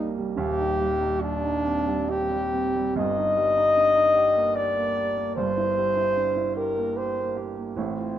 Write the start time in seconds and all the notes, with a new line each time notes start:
Already playing: C2 G3 A#3 D4 D#4
0.18 G3
0.36 D#1 D#2 G4
0.59 D#4
0.80 G3
1.01 D#4
1.21 D4
1.43 D#4
1.65 C4
1.87 G3
2.09 C4 G4
2.31 G3
2.53 C4
2.76 G3
2.95 G1 G2 D#5
3.17 D#4
3.37 G3
3.57 D#4
3.76 D4
3.95 D#4
4.15 G4
4.35 A#3
4.55 G4 D5
4.76 A#3
4.97 G4
5.17 A#3
5.36 G1 G2 C5
5.57 E4
5.77 G3
5.97 E4
6.16 D4
6.36 E4
6.57 G4 A#4
6.77 A#3
6.97 G4 C5
7.17 A#3
7.36 G4
7.57 A#3
7.76 A1 A2 C4
7.98 F4